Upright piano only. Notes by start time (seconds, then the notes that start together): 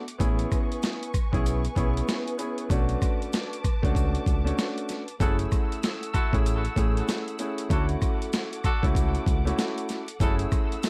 0.18 B3 C#4 E4 G#4
1.32 B3 C#4 E4 G#4
1.75 B3 C#4 E4 G#4
2.38 B3 C#4 E4 G#4
2.69 A3 C#4 D4 F#4
3.82 A3 C#4 D4 F#4
4.44 A3 C#4 D4 F#4
5.20 A3 C#4 E4 G#4
6.32 A3 C#4 E4 G#4
6.76 A3 C#4 E4 G#4
7.38 A3 C#4 E4 G#4
7.69 A3 C#4 E4 F#4
8.82 A3 C#4 E4 F#4
9.45 A3 C#4 E4 F#4
10.20 A3 C#4 E4 G#4